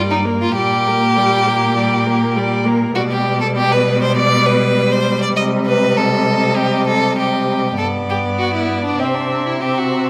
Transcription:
Already playing: G2 G3 D5
0.11 D#4
0.25 A#3 A#4
0.42 F4
0.55 A#2 G3 G4 D5
0.87 A#3 A#4
1.16 G3 D5
1.47 A#3 A#4
1.76 G3 D5
2.06 A#3 A#4
2.36 G3 D5
2.65 A#3 A#4
2.95 B2 G3 F#4 D5
3.11 G4
3.41 A4
3.57 G4
3.72 B4
4.02 C5
4.16 D5
4.46 B4
4.92 C5
5.22 D5
5.36 C3 D#5
5.67 B4
5.97 A4
6.56 G4
6.87 A4
7.18 G4
7.77 G2 B3 A4 D5
8.10 G4
8.39 F#4
8.54 E4
8.84 D4
8.99 C3 C4 E5
9.14 D4
9.46 E4
9.61 C4 G4 E5
9.78 F#4

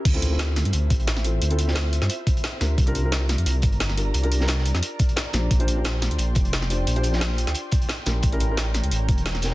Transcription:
0.05 D2 C5 E5, kick, closed hi-hat, crash
0.13 C4 E4 F4 A4, closed hi-hat
0.22 closed hi-hat
0.29 C4 E4 F4 A4
0.39 snare, closed hi-hat
0.56 snare, closed hi-hat
0.65 G2, closed hi-hat
0.73 D2, closed hi-hat
0.90 A1, kick, closed hi-hat
1.00 closed hi-hat
1.07 snare, closed hi-hat
1.16 snare
1.24 C4 E4 F4 A4, closed hi-hat
1.42 D2, closed hi-hat
1.50 C4 E4 F4 A4, closed hi-hat
1.59 closed hi-hat
1.66 C4 E4 F4 A4, snare
1.75 snare, closed hi-hat
1.84 snare
1.93 closed hi-hat
2.02 G2, snare, closed hi-hat
2.09 closed hi-hat
2.27 kick, closed hi-hat
2.37 closed hi-hat
2.44 snare, closed hi-hat
2.60 D2 D4 F4 G4 A#4, snare, closed hi-hat
2.78 C2 D5 A#5, kick, closed hi-hat
2.86 D4 F4 G4 A#4, closed hi-hat
2.95 closed hi-hat
3.02 D4 F4 G4 A#4
3.12 snare, closed hi-hat
3.29 snare, closed hi-hat
3.38 F2, closed hi-hat
3.46 C2, closed hi-hat
3.62 G1, kick, closed hi-hat
3.72 closed hi-hat
3.80 snare, closed hi-hat
3.89 snare
3.96 D4 F4 G4 A#4, closed hi-hat
4.14 C2, closed hi-hat
4.23 D4 F4 G4 A#4, closed hi-hat
4.32 closed hi-hat
4.39 D4 F4 G4 A#4, snare
4.48 snare, closed hi-hat
4.58 snare
4.65 closed hi-hat
4.74 F2, snare, closed hi-hat
4.82 closed hi-hat
4.99 kick, closed hi-hat
5.09 closed hi-hat
5.16 snare, closed hi-hat
5.33 A#1 D4 F4 G4 C5 G5 C6, snare, closed hi-hat
5.51 A#1, kick, closed hi-hat
5.59 D4 F4 G4 C5, closed hi-hat
5.68 closed hi-hat
5.75 D4 F4 G4 C5
5.85 snare, closed hi-hat
6.02 snare, closed hi-hat
6.11 D2, closed hi-hat
6.18 A#1, closed hi-hat
6.35 F1, kick, closed hi-hat
6.45 closed hi-hat
6.53 snare, closed hi-hat
6.62 snare
6.69 D4 F4 G4 C5, closed hi-hat
6.87 A#1, closed hi-hat
6.95 D4 F4 G4 C5, closed hi-hat
7.03 closed hi-hat
7.11 D4 F4 G4 C5, snare
7.20 snare, closed hi-hat
7.30 snare
7.38 closed hi-hat
7.47 D2, snare, closed hi-hat
7.54 closed hi-hat
7.71 kick, closed hi-hat
7.82 closed hi-hat
7.89 snare, closed hi-hat
8.06 A#1 C#4 E4 G4 A#4, snare, closed hi-hat
8.23 A1 C#5 A#5, kick, closed hi-hat
8.31 C#4 E4 G4 A#4, closed hi-hat
8.40 closed hi-hat
8.48 C#4 E4 G4 A#4
8.57 snare, closed hi-hat
8.74 snare, closed hi-hat
8.84 C#2, closed hi-hat
8.91 A1, closed hi-hat
9.09 E1, kick, closed hi-hat
9.18 closed hi-hat
9.26 snare, closed hi-hat
9.35 snare
9.42 C#4 E4 G4 A#4, snare, closed hi-hat

